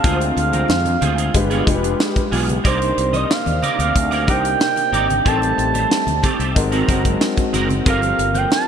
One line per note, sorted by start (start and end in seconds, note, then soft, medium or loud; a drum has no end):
0.00 1.19 G#3 medium
0.00 1.33 C4 medium
0.00 1.19 C4 medium
0.00 2.62 F4 medium
0.00 0.38 F5 medium
0.04 0.30 D2 loud
0.04 1.33 D3 medium
0.04 1.33 G#3 medium
0.04 0.24 C4 medium
0.04 1.20 D4 medium
0.04 1.20 F4 medium
0.04 0.20 F4 medium
0.04 0.19 G#4 medium
0.04 0.11 A#4 medium
0.04 kick loud
0.04 closed hi-hat medium
0.04 muted conga soft
0.04 low conga medium
0.11 1.23 C5 medium
0.20 muted clean electric guitar stroke soft
0.20 closed hi-hat medium
0.20 muted conga soft
0.37 0.63 D2 medium
0.37 1.64 F5 medium
0.37 muted clean electric guitar stroke soft
0.37 closed hi-hat medium
0.53 0.68 C4 medium
0.53 0.68 F4 medium
0.53 0.69 A#4 medium
0.53 closed hi-hat medium
0.53 high conga medium
0.68 0.95 F2 medium
0.68 muted clean electric guitar stroke soft
0.68 snare loud
0.68 muted conga soft
0.85 muted clean electric guitar stroke soft
0.85 closed hi-hat soft
0.85 high conga medium
1.01 1.28 D2 loud
1.01 1.18 C4 medium
1.01 1.17 F4 medium
1.01 1.16 G#4 medium
1.01 closed hi-hat medium
1.01 low conga medium
1.18 1.33 C4 medium
1.18 1.33 F4 medium
1.18 1.33 G#4 medium
1.18 closed hi-hat medium
1.34 1.61 G1 loud
1.34 1.63 G#3 medium
1.34 2.63 G#3 medium
1.34 1.63 D4 medium
1.34 1.63 F4 medium
1.34 2.64 G4 medium
1.34 1.64 G4 medium
1.34 2.64 B4 medium
1.34 1.64 B4 medium
1.34 muted clean electric guitar stroke soft
1.34 kick loud
1.34 closed hi-hat loud
1.34 muted conga soft
1.50 1.65 B3 medium
1.50 1.65 F4 medium
1.50 1.66 G#4 medium
1.50 closed hi-hat soft
1.50 muted conga soft
1.66 1.93 F1 medium
1.66 2.53 G#3 medium
1.66 2.54 D4 medium
1.66 2.54 F4 medium
1.66 2.54 G4 medium
1.66 1.74 G#4 medium
1.66 muted clean electric guitar stroke soft
1.66 kick medium
1.66 closed hi-hat medium
1.66 high conga medium
1.74 2.57 B4 medium
1.83 muted clean electric guitar stroke medium
1.83 closed hi-hat medium
2.00 snare loud
2.00 muted conga soft
2.16 muted clean electric guitar stroke soft
2.16 kick medium
2.16 closed hi-hat soft
2.16 muted conga soft
2.31 2.58 B1 loud
2.31 2.52 B3 medium
2.31 2.47 F4 medium
2.31 2.46 G#4 medium
2.31 open hi-hat medium
2.31 high conga medium
2.47 muted clean electric guitar stroke medium
2.47 closed hi-hat medium
2.47 low conga medium
2.64 2.91 C2 loud
2.64 5.23 C3 medium
2.64 3.80 A#3 medium
2.64 5.23 A#3 medium
2.64 5.23 C4 medium
2.64 3.80 D4 medium
2.64 2.85 D#4 medium
2.64 3.80 D#4 medium
2.64 3.80 G4 medium
2.64 2.80 A#4 loud
2.64 3.80 C5 medium
2.64 3.17 C5 medium
2.64 2.79 D5 loud
2.64 5.23 D5 medium
2.64 kick loud
2.64 closed hi-hat medium
2.80 muted clean electric guitar stroke medium
2.80 closed hi-hat soft
2.97 3.24 C2 medium
2.97 muted clean electric guitar stroke soft
2.97 closed hi-hat medium
3.13 3.28 D#4 medium
3.13 3.29 A#4 medium
3.13 3.29 D#5 medium
3.13 3.34 D#5 medium
3.13 closed hi-hat medium
3.13 high conga medium
3.29 3.80 F5 medium
3.29 muted clean electric guitar stroke medium
3.29 snare loud
3.46 3.59 D#2 medium
3.46 muted clean electric guitar stroke soft
3.46 closed hi-hat soft
3.46 muted conga soft
3.46 high conga medium
3.62 3.79 D#4 medium
3.62 3.78 A#4 medium
3.62 3.77 D5 medium
3.62 closed hi-hat medium
3.62 low conga medium
3.79 3.92 D2 medium
3.79 3.94 D#4 medium
3.79 3.94 A#4 medium
3.79 3.95 D5 medium
3.79 4.31 F5 loud
3.79 closed hi-hat medium
3.95 4.28 D2 loud
3.95 muted clean electric guitar stroke soft
3.95 kick loud
3.95 closed hi-hat loud
4.11 4.26 D#4 medium
4.11 4.27 A#4 medium
4.11 4.27 D5 medium
4.11 closed hi-hat soft
4.11 muted conga soft
4.27 4.54 C2 loud
4.27 5.14 A#3 medium
4.27 5.14 D4 medium
4.27 4.43 D#4 medium
4.27 5.14 D#4 medium
4.27 5.15 G4 medium
4.27 4.43 A#4 medium
4.27 5.15 C5 medium
4.27 4.42 D5 medium
4.27 5.29 G5 loud
4.27 kick loud
4.27 closed hi-hat medium
4.27 high conga medium
4.43 muted clean electric guitar stroke soft
4.43 closed hi-hat medium
4.60 snare loud
4.60 muted conga soft
4.76 muted clean electric guitar stroke soft
4.76 closed hi-hat medium
4.76 muted conga soft
4.92 5.19 G#1 medium
4.92 5.13 D#4 medium
4.92 5.08 A#4 medium
4.92 5.07 D5 loud
4.92 closed hi-hat medium
4.92 high conga medium
5.08 muted clean electric guitar stroke medium
5.08 closed hi-hat medium
5.08 low conga medium
5.25 5.52 A1 loud
5.25 6.54 G3 medium
5.25 6.54 A3 medium
5.25 6.41 A3 medium
5.25 5.45 C4 medium
5.25 7.83 C4 medium
5.25 6.41 C4 medium
5.25 6.41 D#4 medium
5.25 5.41 G4 medium
5.25 6.41 G4 medium
5.25 5.40 A4 loud
5.25 5.32 A#4 medium
5.25 6.24 A5 loud
5.25 kick loud
5.25 closed hi-hat medium
5.33 6.45 C5 medium
5.41 muted clean electric guitar stroke soft
5.41 closed hi-hat soft
5.41 muted conga soft
5.58 5.84 A1 loud
5.58 muted clean electric guitar stroke soft
5.58 closed hi-hat medium
5.74 5.89 C4 soft
5.74 5.90 G4 medium
5.74 5.90 C5 medium
5.74 closed hi-hat medium
5.74 high conga medium
5.91 muted clean electric guitar stroke soft
5.91 snare loud
6.07 6.20 D2 medium
6.07 muted clean electric guitar stroke soft
6.07 closed hi-hat soft
6.07 high conga medium
6.23 6.39 C4 medium
6.23 6.39 G4 medium
6.23 6.38 A4 medium
6.23 kick medium
6.23 closed hi-hat medium
6.23 low conga medium
6.39 6.53 C2 medium
6.39 6.55 C4 medium
6.39 6.56 G4 medium
6.39 6.55 A4 medium
6.39 closed hi-hat medium
6.55 6.82 G#1 loud
6.55 7.85 F#3 medium
6.55 6.84 G#3 medium
6.55 7.85 G#3 medium
6.55 6.84 C4 medium
6.55 6.84 D#4 medium
6.55 6.85 F#4 medium
6.55 6.85 A#4 loud
6.55 muted clean electric guitar stroke soft
6.55 kick loud
6.55 closed hi-hat loud
6.72 6.87 C4 medium
6.72 6.87 F#4 medium
6.72 6.88 A#4 loud
6.72 closed hi-hat soft
6.72 muted conga soft
6.88 7.15 F#1 loud
6.88 7.75 G#3 medium
6.88 7.04 C4 medium
6.88 7.75 C4 medium
6.88 7.75 D#4 medium
6.88 7.75 F#4 medium
6.88 7.04 F#4 medium
6.88 7.75 A#4 loud
6.88 7.03 A#4 medium
6.88 kick loud
6.88 closed hi-hat medium
6.88 high conga medium
7.05 muted clean electric guitar stroke soft
7.05 kick medium
7.05 closed hi-hat medium
7.21 snare loud
7.37 muted clean electric guitar stroke soft
7.37 kick medium
7.37 closed hi-hat medium
7.53 7.80 F#1 medium
7.53 7.73 C4 medium
7.53 7.69 F#4 loud
7.53 7.68 A#4 loud
7.53 snare soft
7.53 closed hi-hat medium
7.53 high conga soft
7.69 muted clean electric guitar stroke soft
7.69 closed hi-hat soft
7.69 low conga medium
7.85 8.12 G1 loud
7.85 8.68 F3 medium
7.85 8.68 G3 medium
7.85 8.68 A#3 medium
7.85 8.68 C4 medium
7.85 8.06 C4 loud
7.85 8.68 F4 medium
7.85 8.02 F4 loud
7.85 8.68 G4 medium
7.85 8.68 A4 medium
7.85 8.68 A#4 medium
7.85 8.01 A#4 loud
7.85 8.39 F5 loud
7.85 kick loud
7.85 closed hi-hat medium
7.85 muted conga soft
8.02 muted clean electric guitar stroke soft
8.02 closed hi-hat soft
8.02 muted conga soft
8.19 8.45 G1 loud
8.19 muted clean electric guitar stroke soft
8.19 closed hi-hat medium
8.35 8.50 C4 medium
8.35 8.50 F4 medium
8.35 8.51 C5 medium
8.35 8.52 G5 medium
8.35 closed hi-hat medium
8.35 high conga medium
8.50 8.68 A5 loud
8.50 muted clean electric guitar stroke soft
8.50 snare loud
8.50 muted conga soft